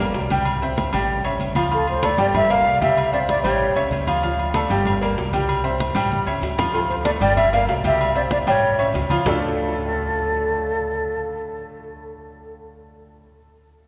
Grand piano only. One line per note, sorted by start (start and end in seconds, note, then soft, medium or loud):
0.00 0.24 A#3 medium
0.00 0.25 A#4 medium
0.00 0.25 D5 medium
0.31 0.56 G3 medium
0.31 0.56 G4 medium
0.31 0.57 G5 medium
0.62 0.88 C4 medium
0.62 0.88 C5 medium
0.62 0.88 E5 medium
0.93 1.19 G3 loud
0.93 1.19 G4 medium
0.93 1.19 G5 medium
1.24 1.50 C#4 medium
1.24 1.50 C#5 medium
1.24 1.50 E5 medium
1.55 1.68 F3 loud
1.55 1.69 F4 medium
1.55 1.69 F5 medium
1.71 1.97 F3 medium
1.71 1.97 F4 medium
1.71 1.97 F5 medium
2.04 2.16 A3 medium
2.04 2.16 A4 medium
2.04 2.16 D5 medium
2.18 2.44 G3 medium
2.18 2.44 G4 loud
2.18 2.44 G5 loud
2.50 2.76 A#3 medium
2.50 2.76 A#4 medium
2.50 2.76 D5 medium
2.81 3.07 G3 medium
2.81 3.07 G4 medium
2.81 3.07 G5 medium
3.13 3.39 C4 medium
3.13 3.39 C5 medium
3.13 3.39 E5 medium
3.44 3.70 G3 medium
3.44 3.70 G4 loud
3.44 3.70 G5 loud
3.75 4.01 C#4 medium
3.75 4.02 C#5 medium
3.75 4.02 E5 medium
4.07 4.20 F3 medium
4.07 4.20 F4 medium
4.07 4.20 F5 medium
4.23 4.49 F3 medium
4.23 4.49 F4 medium
4.23 4.49 F5 medium
4.55 4.67 A3 medium
4.55 4.68 A4 medium
4.55 4.68 D5 medium
4.70 4.96 G3 medium
4.70 4.96 G4 loud
4.70 4.96 G5 loud
5.01 5.27 A#3 medium
5.01 5.27 A#4 medium
5.01 5.27 D5 medium
5.33 5.59 G3 medium
5.33 5.59 G4 medium
5.33 5.59 G5 medium
5.64 5.90 C4 medium
5.64 5.90 C5 medium
5.64 5.90 E5 medium
5.95 6.21 G3 loud
5.95 6.21 G4 loud
5.95 6.21 G5 loud
6.26 6.52 C#4 medium
6.26 6.53 C#5 medium
6.26 6.53 E5 medium
6.58 6.71 F3 medium
6.58 6.71 F4 medium
6.58 6.71 F5 medium
6.74 7.00 F3 medium
6.74 7.00 F4 medium
6.74 7.00 F5 medium
7.05 7.18 A3 medium
7.05 7.18 A4 medium
7.05 7.19 D5 medium
7.21 7.47 G3 loud
7.21 7.47 G4 medium
7.21 7.48 G5 medium
7.53 7.79 A#3 medium
7.53 7.79 A#4 medium
7.53 7.79 D5 medium
7.84 8.10 G3 medium
7.84 8.10 G4 loud
7.84 8.10 G5 loud
8.15 8.41 C4 medium
8.15 8.42 C5 medium
8.15 8.42 E5 medium
8.47 8.73 G3 loud
8.47 8.73 G4 loud
8.47 8.73 G5 loud
8.79 9.05 C#4 medium
8.79 9.05 C#5 medium
8.79 9.05 E5 medium
9.10 9.23 F3 medium
9.10 9.24 F4 medium
9.10 9.24 F5 medium
9.26 13.24 D3 loud
9.26 13.24 A3 medium
9.26 13.24 D4 medium
9.26 13.24 F4 medium
9.26 13.24 A4 medium
9.26 13.24 D5 loud